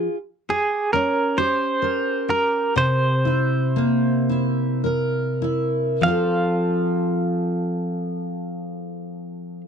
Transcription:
<<
  \new Staff \with { instrumentName = "Clean electric guitar" } { \time 6/8 \key c \phrygian \tempo 4. = 37 r8 aes'8 bes'8 c''4 bes'8 | c''2 r4 | f''2. | }
  \new Staff \with { instrumentName = "Steel-string acoustic guitar" } { \time 6/8 \key c \phrygian r8 g'8 des'8 g'8 bes'8 g'8 | c8 e'8 bes8 e'8 bes'8 e'8 | <f c' f' a'>2. | }
>>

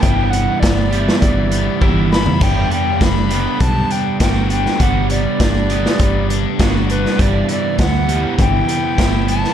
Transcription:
<<
  \new Staff \with { instrumentName = "Recorder" } { \time 4/4 \key g \major \tempo 4 = 101 g''8 fis''8 d''4 d''4 r8 b''8 | g''8 g''8 b''4 a''8 g''8 g''8 g''8 | fis''8 d''2 r4 b'8 | d''8 d''8 fis''4 g''4. a''8 | }
  \new Staff \with { instrumentName = "Overdriven electric guitar" } { \time 4/4 \key g \major <g, e b e'>8 e8 b8 g8 e8 b8 e'8 b8 | g8 g8 d'8 b8 g8 d'8 fis'8 d'8 | g8 g8 d'8 b8 g8 d'8 fis'8 d'8 | g,8 e8 b8 g8 e8 b8 e'8 b8 | }
  \new Staff \with { instrumentName = "Overdriven electric guitar" } { \time 4/4 \key g \major <g b e' g'>4. <g b e' g'>4. <g b e' g'>4 | <g b d' g'>4. <g b d' g'>4. <g b d'>4 | <g b d'>4. <g b d' g'>4. <g b d'>4 | <g b e' g'>4. <g b e' g'>4. <g b e' g'>4 | }
  \new Staff \with { instrumentName = "Fingered electric bass" } { \clef bass \time 4/4 \key g \major g,,4 g,,4 g,,4 g,,4 | g,,8 r8 fis,,4 b,,8 r8 g,,4 | g,,4 g,,4 g,,4 g,,4 | g,,8 r8 d,4 g,,8 r8 g,,4 | }
  \new DrumStaff \with { instrumentName = "Drums" } \drummode { \time 4/4 <hh bd>8 hh8 <hh bd sn>8 hh16 sn16 <hh bd>8 hh8 <bd tommh>8 sn16 tomfh16 | <cymc hh bd>8 hh8 <hh bd sn>8 hh8 <hh bd>8 hh8 <hh bd sn>8 hh16 sn16 | <hh bd>8 hh8 <hh bd sn>8 hh16 sn16 <hh bd>8 hh8 <hh bd sn>8 hh16 sn16 | <hh bd>8 hh8 <hh bd sn>8 hh8 <hh bd>8 hh8 <hh bd sn>8 hh16 sn16 | }
>>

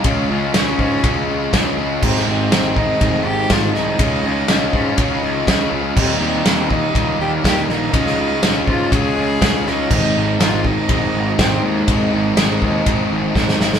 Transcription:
<<
  \new Staff \with { instrumentName = "Cello" } { \time 4/4 \key aes \major \tempo 4 = 122 aes8 des'2. r8 | c'8 c'4 ees'4 g'8 f'8 ees'8~ | ees'4. des'8 ees'4. r8 | c'8 c'4 ees'4 g'8 g'8 ees'8~ |
ees'4. f'8 aes'4. ees'8~ | ees'4 f'8 ees'4. c'8 aes8~ | aes2. r4 | }
  \new Staff \with { instrumentName = "Distorted electric guitar" } { \time 4/4 \key aes \major <des aes des' f' aes'>8 <des' f' aes'>8 <aes des' f' aes'>8 <des' f' aes'>8 <des aes des' f' aes'>8 <des' f' aes'>8 <des aes des' f' aes'>8 <des' f' aes'>8 | <aes, ees aes c' ees' aes'>8 <aes c' ees' aes'>8 <aes c' ees' aes'>8 <aes c' ees' aes'>8 <aes, ees aes c' ees' aes'>8 <aes c' ees' aes'>8 <aes, ees aes c' ees' aes'>8 <aes c' ees' aes'>8 | <des aes des' f' aes'>8 <des' f' aes'>8 <aes des' f' aes'>8 <des' f' aes'>8 <des aes des' f' aes'>8 <des' f' aes'>8 <des aes des' f' aes'>8 <des' f' aes'>8 | <ees g bes ees'>8 <g bes ees'>8 <ees g bes ees'>8 <g bes ees'>8 <ees g bes ees'>8 <g bes ees'>8 <ees g bes ees'>8 <g bes ees'>8 |
<des aes des' f'>8 <aes des' f'>8 <des aes des' f'>8 <aes des' f'>8 <des aes des' f'>8 <aes des' f'>8 <des aes des' f'>8 <aes des' f'>8 | <aes, ees aes c' ees'>8 <aes c' ees'>8 <ees aes c' ees'>8 <aes c' ees'>8 <aes, ees aes c' ees'>8 <aes c' ees'>8 <aes, ees aes c' ees'>8 <aes c' ees'>8 | <aes, ees aes c' ees'>8 <aes c' ees'>8 <ees aes c' ees'>8 <aes c' ees'>8 <aes, ees aes c' ees'>8 <aes c' ees'>8 <aes, ees aes c' ees'>8 <aes c' ees'>8 | }
  \new Staff \with { instrumentName = "Distorted electric guitar" } { \time 4/4 \key aes \major <des aes des' f'>8 <aes des' f'>8 <des aes des' f'>8 <aes des' f'>8 <des aes des' f'>4 <des aes des' f'>8 <aes des' f'>8 | <aes, ees aes c' ees'>8 <aes c' ees'>8 <ees aes c' ees'>8 <aes c' ees'>8 <aes, ees aes c' ees'>4 <ees aes c' ees'>8 <aes c' ees'>8 | <des aes des' f'>8 <aes des' f'>8 <des aes des' f'>8 <aes des' f'>8 <des aes des' f'>4 <des aes des' f'>8 <aes des' f'>8 | <ees g bes ees'>8 <g bes ees'>8 <ees g bes ees'>8 <g bes ees'>8 <ees g bes ees'>4 <ees g bes ees'>8 <g bes ees'>8 |
<des aes des' f'>8 <aes des' f'>8 <des aes des' f'>8 <aes des' f'>8 <des aes des' f'>4 <des aes des' f'>8 <aes des' f'>8 | <aes, ees aes c' ees'>8 <aes c' ees'>8 <ees aes c' ees'>8 <aes c' ees'>8 <aes, ees aes c' ees'>4 <ees aes c' ees'>8 <aes c' ees'>8 | <aes, ees aes c' ees'>8 <aes c' ees'>8 <ees aes c' ees'>8 <aes c' ees'>8 <aes, ees aes c' ees'>4 <ees aes c' ees'>8 <aes c' ees'>8 | }
  \new Staff \with { instrumentName = "Picked electric bass" } { \clef bass \time 4/4 \key aes \major des,8 des,8 des,8 aes,8 des,8 des,8 des,8 des,8 | aes,,8 aes,,8 aes,,4 f,,8 aes,,8 aes,,8 c,8 | des,8 des,8 des,8 aes,8 des,8 des,8 des,8 des,8 | ees,8 ees,8 ees,4 des,8 ees,8 ees,8 bes,,8 |
des,8 des,8 des,8 aes,8 des,8 des,8 des,8 des,8 | aes,,8 aes,,8 aes,,4 f,,8 aes,,8 aes,,8 ees,8 | aes,,8 aes,,8 aes,,8 ees,8 aes,,8 aes,,8 aes,,8 aes,,8 | }
  \new DrumStaff \with { instrumentName = "Drums" } \drummode { \time 4/4 <bd rb>4 <rb sn>8 bd8 <bd rb>4 <bd rb sn>4 | <cymc bd>16 sn8. <rb sn>8 bd8 <bd rb>4 <bd rb sn>8 sn8 | <bd rb>4 <rb sn>8 bd8 <bd rb>4 <bd rb sn>4 | <cymc bd>4 <rb sn>8 bd8 <bd rb>4 <bd rb sn>8 sn8 |
<bd rb>16 sn8. <rb sn>8 bd8 <bd rb>4 <bd rb sn>8 sn8 | <cymc bd>4 <rb sn>8 bd8 <bd rb>4 <bd rb sn>4 | <bd rb>4 <rb sn>8 bd8 <bd rb>4 <bd sn>16 sn16 sn16 sn16 | }
>>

